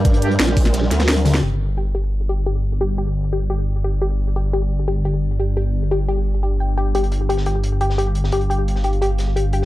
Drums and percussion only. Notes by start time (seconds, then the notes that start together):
0.05 kick, closed hi-hat
0.14 closed hi-hat
0.22 closed hi-hat
0.31 closed hi-hat
0.39 snare, closed hi-hat
0.48 snare
0.57 kick, closed hi-hat, open hi-hat
0.65 snare, closed hi-hat
0.73 snare, closed hi-hat
0.83 snare
0.91 snare, closed hi-hat
1.00 snare, closed hi-hat
1.08 snare, closed hi-hat
1.17 closed hi-hat, high tom
1.25 snare, closed hi-hat, open hi-hat, mid tom
1.34 snare
6.95 closed hi-hat
7.04 closed hi-hat
7.12 closed hi-hat
7.30 closed hi-hat
7.38 snare
7.46 closed hi-hat
7.64 closed hi-hat
7.81 closed hi-hat
7.90 snare
7.99 closed hi-hat
8.15 closed hi-hat
8.24 snare
8.32 closed hi-hat
8.41 closed hi-hat
8.51 closed hi-hat
8.68 closed hi-hat
8.76 snare
8.84 closed hi-hat
8.93 closed hi-hat
9.02 closed hi-hat
9.18 snare, closed hi-hat
9.37 closed hi-hat
9.53 closed hi-hat